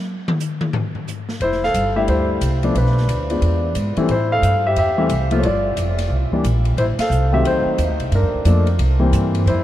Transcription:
0.28 mid tom
0.40 hi-hat pedal
0.61 mid tom
0.73 floor tom
0.95 floor tom
1.08 floor tom, hi-hat pedal
1.29 snare
1.40 upright bass F1, grand piano E4 C5, kick, ride
1.52 snare
1.64 grand piano A4 F5, snare
1.74 upright bass G1, kick, hi-hat pedal, ride
1.96 grand piano G3 A3 D4 E4 G4 E5
2.08 upright bass D2, grand piano E4 C5, kick, ride
2.41 upright bass C2, kick, hi-hat pedal, ride
2.63 grand piano F3 A3 B3 D4, ride
2.75 upright bass B1, grand piano D4 B4, kick, ride
2.86 snare
2.97 snare
3.08 upright bass D2, kick, hi-hat pedal, ride
3.30 grand piano G#3 B3 D4 F4, ride
3.41 upright bass E2, ride
3.75 upright bass G#2, kick, hi-hat pedal, ride
3.97 grand piano E3 G3 A3 C4, muted upright bass stroke, ride
4.09 upright bass A2, grand piano C5, kick, ride
4.13 grand piano E4
4.32 grand piano A4 F5
4.42 upright bass G2, kick, hi-hat pedal, ride
4.67 grand piano G4 E5
4.76 upright bass E2, grand piano G4 E5, kick, ride
4.98 grand piano E3 G3 A3 C4
5.09 upright bass C2, kick, hi-hat pedal, ride
5.31 grand piano F3 A3 A#3 F4, ride
5.39 upright bass G1, grand piano C#5, kick, ride
5.45 grand piano F4 D5
5.77 upright bass F1, kick, hi-hat pedal, ride
5.99 snare, ride
6.10 upright bass C2, kick
6.32 grand piano E3 G3 A#3 D4, kick
6.44 upright bass A#1, hi-hat pedal, ride
6.65 ride
6.77 upright bass A1, grand piano E4 C5, kick, ride
6.98 grand piano A4 F5, muted upright bass stroke, snare, ride
7.10 upright bass C2, hi-hat pedal
7.32 grand piano D#3 F#3 A3 C4 G4 E5
7.44 upright bass D2, grand piano D#4 C5, kick, ride
7.65 muted upright bass stroke
7.78 upright bass D#2, kick, hi-hat pedal, ride
7.88 upright bass D2
8.00 upright bass C2, ride
8.12 upright bass G2, grand piano D4 A#4, kick, ride
8.22 upright bass F2
8.34 upright bass D2
8.45 upright bass F2, grand piano F3 A3 A#3 D4, hi-hat pedal, ride
8.67 ride
8.79 upright bass C2, kick, ride
9.00 grand piano E3 G3 A#3 C4
9.12 upright bass G2, hi-hat pedal, ride
9.35 ride
9.46 upright bass F2, grand piano E4 C5, kick, ride

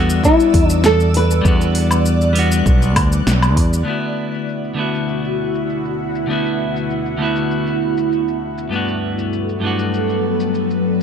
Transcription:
Already playing: fretless electric bass E2, clean electric guitar G3 B3 D4 F#4, nylon-string guitar A4, ambient pad D5 E6
0.10 shaker
0.23 nylon-string guitar E4, kick, shaker
0.40 shaker
0.54 fretless electric bass E2, kick, open hi-hat
0.68 nylon-string guitar D4, shaker
0.84 nylon-string guitar A4, snare, shaker
1.00 shaker
1.14 nylon-string guitar B4, open hi-hat
1.31 shaker
1.41 fretless electric bass E2, clean electric guitar G3 B3, ambient pad F#6, kick, shaker
1.46 clean electric guitar D4 F#4
1.61 shaker
1.75 open hi-hat
1.91 low woodblock, shaker
2.06 shaker
2.21 shaker
2.33 clean electric guitar G3 B3 D4, open hi-hat
2.39 clean electric guitar F#4
2.52 shaker
2.66 fretless electric bass B1, kick, shaker
2.82 shaker
2.96 fretless electric bass D2, kick, open hi-hat, low woodblock
3.12 shaker
3.27 fretless electric bass B1, snare, shaker
3.42 low woodblock, shaker
3.57 fretless electric bass E2, kick, open hi-hat
3.73 shaker
3.83 ambient pad D2, clean electric guitar D3 A3 B3
3.87 ambient pad B2 E4 F#4, clean electric guitar E4 F#4, shaker
4.04 shaker
4.34 shaker
4.49 shaker
4.65 shaker
4.74 clean electric guitar D3 A3 B3
4.79 clean electric guitar E4 F#4
4.95 shaker
5.09 shaker
5.25 shaker
5.55 shaker
5.70 shaker
5.85 shaker
6.15 shaker
6.27 clean electric guitar D3 A3 B3, shaker
6.31 clean electric guitar E4 F#4
6.46 shaker
6.76 shaker
6.90 shaker
7.06 shaker
7.17 clean electric guitar D3 A3 B3
7.22 clean electric guitar E4 F#4
7.36 shaker
7.51 shaker
7.67 shaker
7.97 shaker
8.13 shaker
8.28 shaker
8.58 shaker
8.69 clean electric guitar G2 A3 B3, ambient pad G2 F#3 B3 A4, shaker
8.74 clean electric guitar D4 F#4
8.88 shaker
9.19 shaker
9.33 shaker
9.49 shaker
9.60 clean electric guitar G2 A3 B3
9.65 clean electric guitar D4 F#4
9.79 shaker
9.94 shaker
10.10 shaker
10.40 shaker
10.54 shaker
10.71 shaker

